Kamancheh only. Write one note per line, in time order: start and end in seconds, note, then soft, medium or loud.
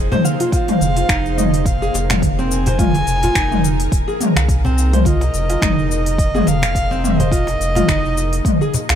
0.53 1.39 F5 loud
1.38 1.68 D#5 medium
1.66 2.23 F5 loud
2.51 4.17 G#5 loud
5.06 5.87 D#5 loud
5.91 6.50 D#5 loud
6.48 7.06 F5 loud
7.05 8.95 D#5 loud